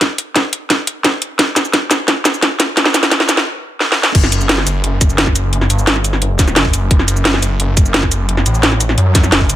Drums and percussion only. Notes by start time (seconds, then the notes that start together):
0.01 kick, snare, closed hi-hat
0.18 closed hi-hat
0.36 kick, snare, closed hi-hat
0.53 closed hi-hat
0.70 kick, snare, closed hi-hat
0.87 closed hi-hat
1.04 kick, snare, closed hi-hat
1.22 closed hi-hat
1.39 kick, snare, closed hi-hat
1.56 snare, closed hi-hat, cabasa
1.65 cabasa
1.73 kick, snare, closed hi-hat
1.91 snare, closed hi-hat, cabasa
2.08 kick, snare, closed hi-hat
2.25 snare, closed hi-hat, cabasa
2.34 cabasa
2.42 kick, snare, closed hi-hat
2.60 snare, closed hi-hat, cabasa
2.77 kick, snare, closed hi-hat
2.86 snare
2.94 snare, closed hi-hat, cabasa
3.03 snare, cabasa
3.11 kick, snare, closed hi-hat
3.20 snare
3.29 snare, closed hi-hat, cabasa
3.37 snare
3.80 snare
3.92 snare
4.03 snare
4.15 kick, closed hi-hat, crash
4.24 snare
4.32 closed hi-hat, cabasa
4.41 cabasa
4.49 snare, closed hi-hat
4.58 snare
4.67 closed hi-hat, cabasa
4.84 closed hi-hat
5.01 kick, closed hi-hat, cabasa
5.10 cabasa
5.18 snare, closed hi-hat
5.27 kick, snare
5.36 closed hi-hat, cabasa
5.53 closed hi-hat
5.61 snare
5.70 closed hi-hat, cabasa
5.79 cabasa
5.87 snare, closed hi-hat
5.96 snare
6.04 closed hi-hat, cabasa
6.13 snare
6.22 closed hi-hat
6.39 kick, snare, closed hi-hat, cabasa
6.48 snare, cabasa
6.56 snare, closed hi-hat
6.65 kick
6.73 closed hi-hat, cabasa
6.91 kick, closed hi-hat
6.99 snare
7.08 closed hi-hat, cabasa
7.17 cabasa
7.25 snare, closed hi-hat
7.34 snare
7.42 closed hi-hat, cabasa
7.60 closed hi-hat
7.77 kick, closed hi-hat, cabasa
7.86 cabasa
7.94 snare, closed hi-hat
8.03 kick, snare
8.11 closed hi-hat, cabasa
8.29 closed hi-hat
8.37 snare
8.46 closed hi-hat, cabasa
8.55 cabasa
8.63 snare, closed hi-hat
8.72 snare
8.80 closed hi-hat, cabasa
8.89 snare
8.98 closed hi-hat
9.15 kick, snare, closed hi-hat, cabasa
9.24 snare, cabasa
9.32 snare, closed hi-hat
9.41 kick
9.49 closed hi-hat, cabasa